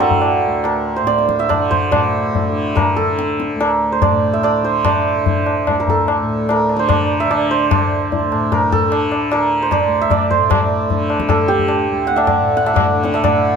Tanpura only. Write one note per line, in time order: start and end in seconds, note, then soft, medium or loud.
0.00 0.46 D2 medium
0.00 1.01 A2 medium
0.00 1.55 D3 medium
0.46 3.55 D2 medium
1.02 1.93 A2 medium
1.55 2.48 D3 medium
1.93 4.10 A2 medium
2.48 3.01 D3 medium
3.01 4.62 D3 medium
3.55 5.69 D2 medium
4.10 6.22 A2 medium
4.62 5.15 D3 medium
5.15 6.75 D3 medium
5.69 7.80 D2 medium
6.22 8.32 A2 medium
6.75 7.27 D3 medium
7.27 8.83 D3 medium
7.80 9.86 D2 medium
8.32 10.37 A2 medium
8.83 9.34 D3 medium
9.34 10.90 D3 medium
9.87 11.91 D2 medium
10.37 12.40 A2 medium
10.90 11.41 D3 medium
11.41 12.91 D3 medium
11.92 13.56 D2 medium
12.40 13.25 A2 medium
12.91 13.56 D3 medium
13.25 13.56 A2 medium